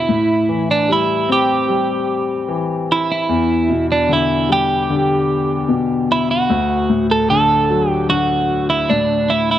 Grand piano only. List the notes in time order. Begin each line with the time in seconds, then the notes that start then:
Already playing: B2 D3 G#3
0.09 A2
0.49 E3
0.89 G3
1.28 C4
1.68 G3
2.48 E3
3.29 E2
3.69 B2
4.09 D3
4.49 G3
4.90 D3
5.69 B2
6.50 D2
6.90 A2
7.30 D3
7.70 F#3
8.09 D3
8.90 A2